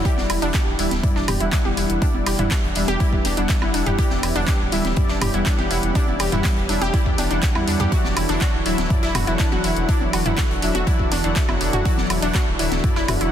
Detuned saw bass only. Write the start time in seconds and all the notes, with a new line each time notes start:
0.17 E1
0.30 E1
0.42 E1
0.67 D1
0.79 D1
0.91 D1
1.16 E1
1.28 E1
1.40 E1
1.65 E1
1.77 E1
1.90 E1
2.14 E1
2.26 E1
2.39 E1
2.64 E1
2.76 E1
2.88 E1
3.13 E1
3.25 E1
3.37 E1
3.62 F#1
3.74 E1
3.86 E1
4.11 E1
4.23 E1
4.36 E1
4.60 D1
4.72 D1
4.85 D1
5.09 E1
5.21 E1
5.34 E1
5.59 E1
5.71 E1
5.83 E1
6.08 E1
6.20 E1
6.32 E1
6.57 E1
6.69 E1
6.82 E1
7.06 E2
7.18 E1
7.31 E1
7.55 E2
7.67 E2
7.80 E2
8.05 E1
8.17 E1
8.29 E1
8.54 D1
8.66 D1
8.78 D1
9.03 E1
9.15 E1
9.27 E1
9.52 E1
9.64 E1
9.76 E1
10.01 E1
10.13 E1
10.26 E1
10.50 E1
10.62 E1
10.75 E1
10.99 E1
11.12 E1
11.24 E1
11.49 F#1
11.61 E1
11.73 E1
11.98 E1
12.10 E1
12.22 E1
12.47 D1
12.59 D1
12.72 D1
12.96 E1
13.08 E1
13.21 E1